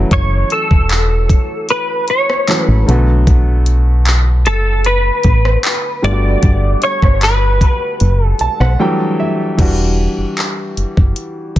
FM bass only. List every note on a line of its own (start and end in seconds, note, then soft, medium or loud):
0.11 0.44 F#1 loud
0.71 1.36 E1 medium
2.68 2.84 A1 medium
2.88 4.47 B1 loud
4.46 5.11 F#1 loud
5.25 5.57 A1 medium
6.04 6.36 G1 loud
6.43 6.76 G1 loud
7.03 7.67 G1 medium
8.01 8.34 F#1 loud
8.41 8.48 B1 soft
8.60 8.76 B1 loud
9.59 10.08 E1 loud
10.18 10.26 F#1 soft
10.78 10.85 F#1 soft
10.97 11.13 F#1 medium